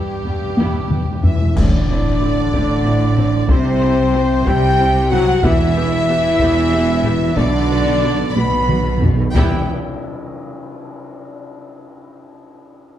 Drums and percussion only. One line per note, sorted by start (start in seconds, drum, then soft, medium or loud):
0.57 taiko high medium
0.91 taiko mid medium
1.24 taiko low loud
1.57 concert bass drum medium
1.57 taiko loud
1.57 crash medium
2.53 taiko medium
3.17 taiko low-mid medium
3.49 taiko loud
3.82 taiko rim soft
4.47 taiko loud
5.12 taiko low-mid medium
5.43 taiko loud
6.39 taiko medium
7.04 taiko low-mid medium
7.37 taiko loud
8.36 taiko high medium
8.69 taiko mid medium
9.02 taiko low loud
9.35 taiko loud
9.35 tam-tam medium